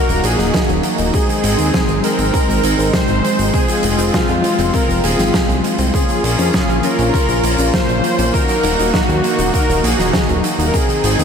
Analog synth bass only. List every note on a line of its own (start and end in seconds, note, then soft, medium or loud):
0.09 0.22 D#1 medium
0.24 0.37 A#1 medium
0.39 0.52 D#1 medium
0.69 0.82 D#1 medium
0.99 1.12 D#1 medium
1.44 1.57 G#1 medium
1.59 1.72 D#2 medium
1.89 2.02 G#1 medium
2.19 2.32 G#1 medium
2.49 2.62 G#1 medium
2.64 2.77 G#1 medium
2.79 2.92 G#1 medium
3.09 3.22 G#1 medium
3.39 3.52 G#1 medium
3.84 3.97 F1 medium
3.99 4.12 F1 medium
4.29 4.42 F2 medium
4.59 4.72 F1 medium
4.89 5.02 F1 medium
5.04 5.17 D#1 medium
5.19 5.32 G#1 medium
5.49 5.62 C2 medium
5.79 5.92 C2 medium
6.24 6.37 A#1 medium
6.39 6.52 F2 medium
6.69 6.82 A#1 medium
6.99 7.12 A#1 medium
7.29 7.42 A#1 medium
7.44 7.57 A#1 medium
7.59 7.72 A#1 medium
7.89 8.02 A#1 medium
8.19 8.32 A#1 medium
8.64 8.77 D#1 loud
8.79 8.92 D#1 medium
9.09 9.22 D#2 medium
9.39 9.52 D#1 medium
9.69 9.82 D#1 medium
9.84 9.97 A#1 medium
9.99 10.12 D#1 medium
10.29 10.42 D#1 medium
10.59 10.72 D#1 medium
11.04 11.17 G#1 loud
11.19 11.24 D#2 medium